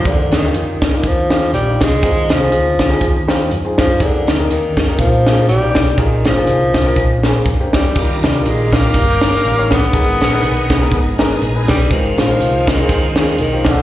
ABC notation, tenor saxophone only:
X:1
M:4/4
L:1/8
Q:"Swing" 1/4=122
K:Eb
V:1 name="Tenor saxophone" clef=bass
D, E,2 E, F,2 G, A,- | A, F,4 z2 F, | D, E, E, E, F,2 G,2 | E, F,4 z2 G,- |
G, G, A, B,4 _C- | _C4- C z2 G, | E, F,2 E,2 E, E, D, |]